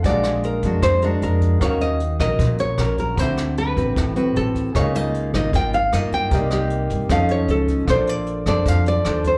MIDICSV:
0, 0, Header, 1, 6, 480
1, 0, Start_track
1, 0, Tempo, 391952
1, 54, Time_signature, 4, 2, 24, 8
1, 11486, End_track
2, 0, Start_track
2, 0, Title_t, "Grand piano"
2, 0, Program_c, 0, 0
2, 0, Control_c, 0, 64, 127
2, 32, Note_on_c, 0, 78, 49
2, 52, Note_on_c, 0, 68, 44
2, 70, Control_c, 0, 64, 0
2, 79, Note_on_c, 0, 74, 47
2, 107, Note_on_c, 0, 77, 57
2, 292, Control_c, 0, 64, 127
2, 1924, Note_off_c, 0, 78, 0
2, 1934, Note_off_c, 0, 68, 0
2, 1941, Note_on_c, 0, 66, 50
2, 1948, Note_off_c, 0, 74, 0
2, 1962, Note_off_c, 0, 77, 0
2, 1966, Note_on_c, 0, 70, 45
2, 1988, Control_c, 0, 64, 0
2, 1988, Note_on_c, 0, 73, 43
2, 2016, Note_on_c, 0, 77, 56
2, 2210, Control_c, 0, 64, 127
2, 3838, Note_off_c, 0, 66, 0
2, 3851, Note_off_c, 0, 70, 0
2, 3862, Note_off_c, 0, 73, 0
2, 3865, Note_on_c, 0, 66, 51
2, 3876, Note_off_c, 0, 77, 0
2, 3888, Note_on_c, 0, 83, 44
2, 3911, Control_c, 0, 64, 0
2, 3938, Note_on_c, 0, 76, 54
2, 4136, Control_c, 0, 64, 127
2, 5760, Note_off_c, 0, 66, 0
2, 5771, Note_off_c, 0, 83, 0
2, 5789, Note_on_c, 0, 68, 47
2, 5797, Note_off_c, 0, 76, 0
2, 5812, Note_on_c, 0, 70, 45
2, 5830, Control_c, 0, 64, 0
2, 5837, Note_on_c, 0, 75, 42
2, 5864, Note_on_c, 0, 77, 54
2, 6021, Control_c, 0, 64, 127
2, 7682, Note_off_c, 0, 68, 0
2, 7693, Note_off_c, 0, 70, 0
2, 7703, Note_on_c, 0, 67, 50
2, 7706, Note_off_c, 0, 75, 0
2, 7720, Note_off_c, 0, 77, 0
2, 7723, Note_on_c, 0, 70, 48
2, 7749, Control_c, 0, 64, 0
2, 7750, Note_on_c, 0, 74, 45
2, 7773, Note_on_c, 0, 75, 57
2, 7978, Control_c, 0, 64, 127
2, 8658, Note_off_c, 0, 67, 0
2, 8668, Note_off_c, 0, 70, 0
2, 8680, Note_on_c, 0, 69, 43
2, 8682, Note_off_c, 0, 74, 0
2, 8693, Note_off_c, 0, 75, 0
2, 8703, Note_on_c, 0, 73, 46
2, 8708, Control_c, 0, 64, 0
2, 8729, Note_on_c, 0, 75, 55
2, 8912, Control_c, 0, 64, 127
2, 9625, Note_on_c, 0, 65, 47
2, 9626, Note_off_c, 0, 69, 0
2, 9638, Note_off_c, 0, 73, 0
2, 9647, Note_on_c, 0, 69, 43
2, 9651, Note_off_c, 0, 75, 0
2, 9666, Control_c, 0, 64, 0
2, 9677, Note_on_c, 0, 72, 44
2, 9701, Note_on_c, 0, 74, 55
2, 9874, Control_c, 0, 64, 127
2, 11486, Note_off_c, 0, 65, 0
2, 11486, Note_off_c, 0, 69, 0
2, 11486, Note_off_c, 0, 72, 0
2, 11486, Note_off_c, 0, 74, 0
2, 11486, End_track
3, 0, Start_track
3, 0, Title_t, "Nylon-string guitar"
3, 0, Program_c, 1, 24
3, 68, Note_on_c, 1, 74, 85
3, 507, Note_off_c, 1, 74, 0
3, 547, Note_on_c, 1, 70, 82
3, 1018, Note_on_c, 1, 72, 86
3, 1034, Note_off_c, 1, 70, 0
3, 1258, Note_on_c, 1, 70, 74
3, 1263, Note_off_c, 1, 72, 0
3, 1497, Note_off_c, 1, 70, 0
3, 1511, Note_on_c, 1, 70, 84
3, 1989, Note_on_c, 1, 73, 84
3, 1996, Note_off_c, 1, 70, 0
3, 2217, Note_off_c, 1, 73, 0
3, 2222, Note_on_c, 1, 75, 85
3, 2684, Note_off_c, 1, 75, 0
3, 2699, Note_on_c, 1, 75, 85
3, 3179, Note_off_c, 1, 75, 0
3, 3184, Note_on_c, 1, 73, 92
3, 3666, Note_off_c, 1, 73, 0
3, 3670, Note_on_c, 1, 70, 69
3, 3910, Note_off_c, 1, 70, 0
3, 3910, Note_on_c, 1, 72, 82
3, 4383, Note_off_c, 1, 72, 0
3, 4388, Note_on_c, 1, 71, 80
3, 4902, Note_off_c, 1, 71, 0
3, 4902, Note_on_c, 1, 69, 80
3, 5051, Note_off_c, 1, 69, 0
3, 5349, Note_on_c, 1, 69, 84
3, 5788, Note_off_c, 1, 69, 0
3, 5827, Note_on_c, 1, 73, 81
3, 6070, Note_off_c, 1, 73, 0
3, 6070, Note_on_c, 1, 75, 96
3, 6539, Note_off_c, 1, 75, 0
3, 6554, Note_on_c, 1, 75, 86
3, 6790, Note_off_c, 1, 75, 0
3, 6803, Note_on_c, 1, 79, 106
3, 7027, Note_off_c, 1, 79, 0
3, 7032, Note_on_c, 1, 77, 91
3, 7272, Note_off_c, 1, 77, 0
3, 7272, Note_on_c, 1, 75, 94
3, 7509, Note_off_c, 1, 75, 0
3, 7518, Note_on_c, 1, 79, 86
3, 8707, Note_off_c, 1, 79, 0
3, 8712, Note_on_c, 1, 77, 101
3, 8948, Note_off_c, 1, 77, 0
3, 8956, Note_on_c, 1, 73, 80
3, 9189, Note_on_c, 1, 69, 79
3, 9190, Note_off_c, 1, 73, 0
3, 9674, Note_off_c, 1, 69, 0
3, 9674, Note_on_c, 1, 72, 91
3, 9912, Note_off_c, 1, 72, 0
3, 9912, Note_on_c, 1, 74, 91
3, 10374, Note_off_c, 1, 74, 0
3, 10389, Note_on_c, 1, 74, 85
3, 10633, Note_off_c, 1, 74, 0
3, 10633, Note_on_c, 1, 77, 92
3, 10869, Note_off_c, 1, 77, 0
3, 10875, Note_on_c, 1, 74, 89
3, 11352, Note_off_c, 1, 74, 0
3, 11357, Note_on_c, 1, 72, 69
3, 11486, Note_off_c, 1, 72, 0
3, 11486, End_track
4, 0, Start_track
4, 0, Title_t, "Nylon-string guitar"
4, 0, Program_c, 2, 24
4, 57, Note_on_c, 2, 46, 58
4, 60, Note_on_c, 2, 56, 52
4, 68, Note_on_c, 2, 62, 60
4, 70, Note_on_c, 2, 66, 61
4, 738, Note_off_c, 2, 56, 0
4, 740, Note_off_c, 2, 62, 0
4, 743, Note_off_c, 2, 66, 0
4, 792, Note_on_c, 2, 56, 54
4, 800, Note_on_c, 2, 62, 55
4, 805, Note_on_c, 2, 66, 65
4, 992, Note_off_c, 2, 46, 0
4, 1225, Note_off_c, 2, 56, 0
4, 1226, Note_off_c, 2, 62, 0
4, 1231, Note_off_c, 2, 66, 0
4, 1273, Note_on_c, 2, 56, 58
4, 1278, Note_on_c, 2, 62, 62
4, 1282, Note_on_c, 2, 66, 70
4, 1945, Note_off_c, 2, 56, 0
4, 1947, Note_off_c, 2, 62, 0
4, 1947, Note_off_c, 2, 66, 0
4, 1972, Note_on_c, 2, 51, 54
4, 1977, Note_on_c, 2, 61, 54
4, 1981, Note_on_c, 2, 66, 54
4, 1987, Note_on_c, 2, 70, 61
4, 2450, Note_off_c, 2, 61, 0
4, 2454, Note_off_c, 2, 66, 0
4, 2456, Note_off_c, 2, 70, 0
4, 2696, Note_on_c, 2, 61, 51
4, 2700, Note_on_c, 2, 66, 52
4, 2706, Note_on_c, 2, 70, 63
4, 2909, Note_off_c, 2, 51, 0
4, 2940, Note_on_c, 2, 46, 52
4, 3377, Note_off_c, 2, 61, 0
4, 3377, Note_off_c, 2, 66, 0
4, 3381, Note_off_c, 2, 70, 0
4, 3410, Note_on_c, 2, 61, 47
4, 3418, Note_on_c, 2, 66, 55
4, 3420, Note_on_c, 2, 70, 60
4, 3854, Note_off_c, 2, 61, 0
4, 3855, Note_off_c, 2, 66, 0
4, 3858, Note_off_c, 2, 70, 0
4, 3873, Note_off_c, 2, 46, 0
4, 3896, Note_on_c, 2, 50, 52
4, 3900, Note_on_c, 2, 60, 61
4, 3904, Note_on_c, 2, 66, 53
4, 4578, Note_off_c, 2, 60, 0
4, 4578, Note_off_c, 2, 66, 0
4, 4615, Note_on_c, 2, 60, 53
4, 4620, Note_on_c, 2, 66, 53
4, 4625, Note_on_c, 2, 71, 58
4, 4831, Note_off_c, 2, 50, 0
4, 4859, Note_on_c, 2, 45, 51
4, 5056, Note_off_c, 2, 60, 0
4, 5057, Note_off_c, 2, 66, 0
4, 5061, Note_off_c, 2, 71, 0
4, 5094, Note_on_c, 2, 60, 60
4, 5099, Note_on_c, 2, 66, 58
4, 5105, Note_on_c, 2, 71, 67
4, 5775, Note_off_c, 2, 60, 0
4, 5777, Note_off_c, 2, 66, 0
4, 5778, Note_off_c, 2, 71, 0
4, 5792, Note_off_c, 2, 45, 0
4, 5828, Note_on_c, 2, 49, 57
4, 5831, Note_on_c, 2, 58, 53
4, 5834, Note_on_c, 2, 63, 59
4, 5839, Note_on_c, 2, 65, 62
4, 6022, Note_off_c, 2, 58, 0
4, 6025, Note_off_c, 2, 63, 0
4, 6028, Note_off_c, 2, 65, 0
4, 6060, Note_on_c, 2, 58, 56
4, 6065, Note_on_c, 2, 63, 64
4, 6070, Note_on_c, 2, 65, 66
4, 6498, Note_off_c, 2, 58, 0
4, 6501, Note_off_c, 2, 63, 0
4, 6502, Note_off_c, 2, 65, 0
4, 6536, Note_on_c, 2, 58, 53
4, 6541, Note_on_c, 2, 63, 55
4, 6548, Note_on_c, 2, 65, 61
4, 6736, Note_off_c, 2, 58, 0
4, 6739, Note_off_c, 2, 63, 0
4, 6741, Note_off_c, 2, 65, 0
4, 6756, Note_off_c, 2, 49, 0
4, 6780, Note_on_c, 2, 58, 52
4, 6786, Note_on_c, 2, 63, 55
4, 6790, Note_on_c, 2, 65, 59
4, 7085, Note_off_c, 2, 58, 0
4, 7088, Note_off_c, 2, 63, 0
4, 7090, Note_off_c, 2, 65, 0
4, 7257, Note_on_c, 2, 58, 58
4, 7267, Note_on_c, 2, 63, 49
4, 7270, Note_on_c, 2, 65, 54
4, 7715, Note_off_c, 2, 58, 0
4, 7721, Note_off_c, 2, 63, 0
4, 7721, Note_off_c, 2, 65, 0
4, 7751, Note_on_c, 2, 48, 55
4, 7753, Note_on_c, 2, 58, 55
4, 7757, Note_on_c, 2, 63, 60
4, 7763, Note_on_c, 2, 67, 62
4, 7942, Note_off_c, 2, 58, 0
4, 7946, Note_off_c, 2, 63, 0
4, 7949, Note_off_c, 2, 67, 0
4, 7982, Note_on_c, 2, 58, 58
4, 7988, Note_on_c, 2, 63, 59
4, 7996, Note_on_c, 2, 67, 65
4, 8658, Note_off_c, 2, 58, 0
4, 8662, Note_off_c, 2, 63, 0
4, 8664, Note_off_c, 2, 67, 0
4, 8678, Note_off_c, 2, 48, 0
4, 8695, Note_on_c, 2, 53, 55
4, 8700, Note_on_c, 2, 61, 56
4, 8700, Note_on_c, 2, 63, 57
4, 8707, Note_on_c, 2, 69, 61
4, 9614, Note_off_c, 2, 61, 0
4, 9617, Note_off_c, 2, 63, 0
4, 9620, Note_off_c, 2, 69, 0
4, 9630, Note_off_c, 2, 53, 0
4, 9654, Note_on_c, 2, 62, 55
4, 9655, Note_on_c, 2, 58, 54
4, 9658, Note_on_c, 2, 69, 61
4, 9663, Note_on_c, 2, 72, 58
4, 10333, Note_off_c, 2, 62, 0
4, 10336, Note_off_c, 2, 69, 0
4, 10339, Note_off_c, 2, 72, 0
4, 10369, Note_on_c, 2, 62, 63
4, 10375, Note_on_c, 2, 69, 55
4, 10380, Note_on_c, 2, 72, 59
4, 10589, Note_off_c, 2, 58, 0
4, 10603, Note_on_c, 2, 53, 56
4, 11051, Note_off_c, 2, 62, 0
4, 11054, Note_off_c, 2, 69, 0
4, 11057, Note_off_c, 2, 72, 0
4, 11090, Note_on_c, 2, 62, 58
4, 11092, Note_on_c, 2, 69, 52
4, 11097, Note_on_c, 2, 72, 60
4, 11399, Note_off_c, 2, 69, 0
4, 11400, Note_off_c, 2, 62, 0
4, 11403, Note_off_c, 2, 72, 0
4, 11486, Note_off_c, 2, 53, 0
4, 11486, End_track
5, 0, Start_track
5, 0, Title_t, "Upright bass"
5, 0, Program_c, 3, 32
5, 56, Note_on_c, 3, 34, 84
5, 725, Note_off_c, 3, 34, 0
5, 769, Note_on_c, 3, 41, 90
5, 994, Note_off_c, 3, 41, 0
5, 1013, Note_on_c, 3, 41, 82
5, 1460, Note_off_c, 3, 41, 0
5, 1493, Note_on_c, 3, 41, 82
5, 1940, Note_off_c, 3, 41, 0
5, 1969, Note_on_c, 3, 39, 91
5, 2642, Note_off_c, 3, 39, 0
5, 2690, Note_on_c, 3, 34, 92
5, 2915, Note_off_c, 3, 34, 0
5, 2926, Note_on_c, 3, 34, 88
5, 3376, Note_off_c, 3, 34, 0
5, 3401, Note_on_c, 3, 34, 86
5, 3853, Note_off_c, 3, 34, 0
5, 3891, Note_on_c, 3, 38, 81
5, 4563, Note_off_c, 3, 38, 0
5, 4614, Note_on_c, 3, 33, 87
5, 4836, Note_off_c, 3, 33, 0
5, 4860, Note_on_c, 3, 33, 83
5, 5303, Note_off_c, 3, 33, 0
5, 5341, Note_on_c, 3, 33, 80
5, 5783, Note_off_c, 3, 33, 0
5, 5821, Note_on_c, 3, 37, 86
5, 6488, Note_off_c, 3, 37, 0
5, 6537, Note_on_c, 3, 32, 87
5, 6758, Note_off_c, 3, 32, 0
5, 6781, Note_on_c, 3, 32, 88
5, 7223, Note_off_c, 3, 32, 0
5, 7261, Note_on_c, 3, 43, 87
5, 7703, Note_off_c, 3, 43, 0
5, 7735, Note_on_c, 3, 36, 88
5, 8404, Note_off_c, 3, 36, 0
5, 8454, Note_on_c, 3, 43, 90
5, 8676, Note_off_c, 3, 43, 0
5, 8690, Note_on_c, 3, 41, 88
5, 9137, Note_off_c, 3, 41, 0
5, 9162, Note_on_c, 3, 37, 86
5, 9613, Note_off_c, 3, 37, 0
5, 9647, Note_on_c, 3, 34, 83
5, 10320, Note_off_c, 3, 34, 0
5, 10362, Note_on_c, 3, 41, 94
5, 10590, Note_off_c, 3, 41, 0
5, 10605, Note_on_c, 3, 41, 89
5, 11054, Note_off_c, 3, 41, 0
5, 11089, Note_on_c, 3, 39, 90
5, 11486, Note_off_c, 3, 39, 0
5, 11486, End_track
6, 0, Start_track
6, 0, Title_t, "Drums"
6, 50, Note_on_c, 9, 42, 54
6, 52, Note_on_c, 9, 36, 57
6, 172, Note_off_c, 9, 42, 0
6, 174, Note_off_c, 9, 36, 0
6, 288, Note_on_c, 9, 37, 60
6, 288, Note_on_c, 9, 42, 44
6, 410, Note_off_c, 9, 37, 0
6, 410, Note_off_c, 9, 42, 0
6, 532, Note_on_c, 9, 42, 42
6, 654, Note_off_c, 9, 42, 0
6, 767, Note_on_c, 9, 42, 47
6, 770, Note_on_c, 9, 36, 23
6, 889, Note_off_c, 9, 42, 0
6, 893, Note_off_c, 9, 36, 0
6, 1008, Note_on_c, 9, 37, 54
6, 1008, Note_on_c, 9, 42, 57
6, 1010, Note_on_c, 9, 36, 55
6, 1131, Note_off_c, 9, 37, 0
6, 1131, Note_off_c, 9, 42, 0
6, 1133, Note_off_c, 9, 36, 0
6, 1244, Note_on_c, 9, 42, 41
6, 1367, Note_off_c, 9, 42, 0
6, 1492, Note_on_c, 9, 42, 46
6, 1615, Note_off_c, 9, 42, 0
6, 1731, Note_on_c, 9, 36, 21
6, 1732, Note_on_c, 9, 42, 41
6, 1853, Note_off_c, 9, 36, 0
6, 1855, Note_off_c, 9, 42, 0
6, 1971, Note_on_c, 9, 36, 55
6, 1971, Note_on_c, 9, 37, 58
6, 1971, Note_on_c, 9, 42, 54
6, 2094, Note_off_c, 9, 36, 0
6, 2094, Note_off_c, 9, 37, 0
6, 2094, Note_off_c, 9, 42, 0
6, 2213, Note_on_c, 9, 42, 38
6, 2335, Note_off_c, 9, 42, 0
6, 2449, Note_on_c, 9, 42, 37
6, 2571, Note_off_c, 9, 42, 0
6, 2688, Note_on_c, 9, 36, 25
6, 2690, Note_on_c, 9, 37, 58
6, 2690, Note_on_c, 9, 42, 41
6, 2811, Note_off_c, 9, 36, 0
6, 2812, Note_off_c, 9, 37, 0
6, 2812, Note_off_c, 9, 42, 0
6, 2926, Note_on_c, 9, 42, 52
6, 2927, Note_on_c, 9, 36, 52
6, 3049, Note_off_c, 9, 36, 0
6, 3049, Note_off_c, 9, 42, 0
6, 3164, Note_on_c, 9, 42, 43
6, 3286, Note_off_c, 9, 42, 0
6, 3403, Note_on_c, 9, 37, 66
6, 3403, Note_on_c, 9, 42, 45
6, 3525, Note_off_c, 9, 37, 0
6, 3525, Note_off_c, 9, 42, 0
6, 3648, Note_on_c, 9, 36, 21
6, 3649, Note_on_c, 9, 42, 39
6, 3770, Note_off_c, 9, 36, 0
6, 3772, Note_off_c, 9, 42, 0
6, 3886, Note_on_c, 9, 42, 59
6, 3888, Note_on_c, 9, 36, 56
6, 4009, Note_off_c, 9, 42, 0
6, 4010, Note_off_c, 9, 36, 0
6, 4132, Note_on_c, 9, 37, 57
6, 4132, Note_on_c, 9, 42, 42
6, 4254, Note_off_c, 9, 37, 0
6, 4254, Note_off_c, 9, 42, 0
6, 4376, Note_on_c, 9, 42, 43
6, 4499, Note_off_c, 9, 42, 0
6, 4613, Note_on_c, 9, 36, 25
6, 4620, Note_on_c, 9, 42, 45
6, 4736, Note_off_c, 9, 36, 0
6, 4742, Note_off_c, 9, 42, 0
6, 4855, Note_on_c, 9, 36, 55
6, 4861, Note_on_c, 9, 37, 55
6, 4861, Note_on_c, 9, 42, 55
6, 4977, Note_off_c, 9, 36, 0
6, 4983, Note_off_c, 9, 37, 0
6, 4983, Note_off_c, 9, 42, 0
6, 5093, Note_on_c, 9, 42, 42
6, 5215, Note_off_c, 9, 42, 0
6, 5338, Note_on_c, 9, 42, 46
6, 5461, Note_off_c, 9, 42, 0
6, 5575, Note_on_c, 9, 36, 24
6, 5577, Note_on_c, 9, 42, 41
6, 5697, Note_off_c, 9, 36, 0
6, 5699, Note_off_c, 9, 42, 0
6, 5816, Note_on_c, 9, 36, 54
6, 5817, Note_on_c, 9, 37, 56
6, 5817, Note_on_c, 9, 42, 60
6, 5939, Note_off_c, 9, 36, 0
6, 5940, Note_off_c, 9, 37, 0
6, 5940, Note_off_c, 9, 42, 0
6, 6060, Note_on_c, 9, 42, 40
6, 6182, Note_off_c, 9, 42, 0
6, 6298, Note_on_c, 9, 42, 37
6, 6420, Note_off_c, 9, 42, 0
6, 6537, Note_on_c, 9, 36, 24
6, 6539, Note_on_c, 9, 37, 61
6, 6539, Note_on_c, 9, 42, 40
6, 6659, Note_off_c, 9, 36, 0
6, 6661, Note_off_c, 9, 37, 0
6, 6661, Note_off_c, 9, 42, 0
6, 6776, Note_on_c, 9, 36, 57
6, 6777, Note_on_c, 9, 42, 52
6, 6899, Note_off_c, 9, 36, 0
6, 6900, Note_off_c, 9, 42, 0
6, 7018, Note_on_c, 9, 42, 41
6, 7141, Note_off_c, 9, 42, 0
6, 7256, Note_on_c, 9, 37, 63
6, 7256, Note_on_c, 9, 42, 45
6, 7379, Note_off_c, 9, 37, 0
6, 7379, Note_off_c, 9, 42, 0
6, 7493, Note_on_c, 9, 36, 22
6, 7496, Note_on_c, 9, 42, 38
6, 7616, Note_off_c, 9, 36, 0
6, 7619, Note_off_c, 9, 42, 0
6, 7728, Note_on_c, 9, 42, 58
6, 7732, Note_on_c, 9, 36, 57
6, 7850, Note_off_c, 9, 42, 0
6, 7854, Note_off_c, 9, 36, 0
6, 7967, Note_on_c, 9, 37, 62
6, 7967, Note_on_c, 9, 42, 43
6, 8089, Note_off_c, 9, 37, 0
6, 8089, Note_off_c, 9, 42, 0
6, 8205, Note_on_c, 9, 42, 41
6, 8328, Note_off_c, 9, 42, 0
6, 8447, Note_on_c, 9, 42, 44
6, 8449, Note_on_c, 9, 36, 26
6, 8570, Note_off_c, 9, 42, 0
6, 8571, Note_off_c, 9, 36, 0
6, 8688, Note_on_c, 9, 36, 55
6, 8688, Note_on_c, 9, 37, 58
6, 8688, Note_on_c, 9, 42, 60
6, 8810, Note_off_c, 9, 36, 0
6, 8810, Note_off_c, 9, 37, 0
6, 8810, Note_off_c, 9, 42, 0
6, 8922, Note_on_c, 9, 42, 46
6, 9045, Note_off_c, 9, 42, 0
6, 9163, Note_on_c, 9, 42, 46
6, 9285, Note_off_c, 9, 42, 0
6, 9405, Note_on_c, 9, 36, 24
6, 9405, Note_on_c, 9, 42, 42
6, 9528, Note_off_c, 9, 36, 0
6, 9528, Note_off_c, 9, 42, 0
6, 9645, Note_on_c, 9, 36, 58
6, 9645, Note_on_c, 9, 37, 59
6, 9645, Note_on_c, 9, 42, 55
6, 9767, Note_off_c, 9, 37, 0
6, 9767, Note_off_c, 9, 42, 0
6, 9768, Note_off_c, 9, 36, 0
6, 9882, Note_on_c, 9, 42, 43
6, 10005, Note_off_c, 9, 42, 0
6, 10121, Note_on_c, 9, 42, 41
6, 10244, Note_off_c, 9, 42, 0
6, 10360, Note_on_c, 9, 37, 62
6, 10360, Note_on_c, 9, 42, 45
6, 10361, Note_on_c, 9, 36, 24
6, 10482, Note_off_c, 9, 37, 0
6, 10482, Note_off_c, 9, 42, 0
6, 10484, Note_off_c, 9, 36, 0
6, 10602, Note_on_c, 9, 36, 58
6, 10602, Note_on_c, 9, 42, 52
6, 10724, Note_off_c, 9, 42, 0
6, 10725, Note_off_c, 9, 36, 0
6, 10847, Note_on_c, 9, 42, 39
6, 10969, Note_off_c, 9, 42, 0
6, 11079, Note_on_c, 9, 37, 67
6, 11079, Note_on_c, 9, 42, 46
6, 11202, Note_off_c, 9, 37, 0
6, 11202, Note_off_c, 9, 42, 0
6, 11316, Note_on_c, 9, 42, 42
6, 11320, Note_on_c, 9, 36, 23
6, 11439, Note_off_c, 9, 42, 0
6, 11443, Note_off_c, 9, 36, 0
6, 11486, End_track
0, 0, End_of_file